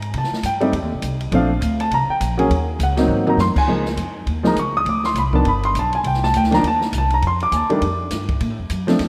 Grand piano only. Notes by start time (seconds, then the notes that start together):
Already playing: A#5
0.18 A5
0.46 G5
0.61 G3 A3 C4 D#4
1.32 F3 A3 C4 D4 F5
1.81 A5
1.94 A#5
2.10 G5
2.38 F#3 A#3 C#4 G#4
2.83 F#5
2.97 F#3 A#3 C4 D#4
3.27 F#3 A#3 C4 D#4 A#5
3.40 C6
3.58 G#5
3.67 F3 G#3 A#3 D#4
4.43 F3 G#3 A#3 D#4 A#5
4.59 C#6
4.77 D#6
4.89 D6
5.06 C6
5.18 B5
5.33 D#3 F3 B3 D4 A5
5.48 B5
5.65 C6
5.79 A5
5.95 G#5
6.07 G5
6.24 A5
6.37 G5
6.51 D#3 F3 A#3 D4 A#5
6.68 A5
6.98 A5
7.14 A#5
7.27 C6
7.43 D6
7.52 G#5
7.56 A5
7.70 D#3 G3 A3 D4
8.87 F3 A3 C4 D4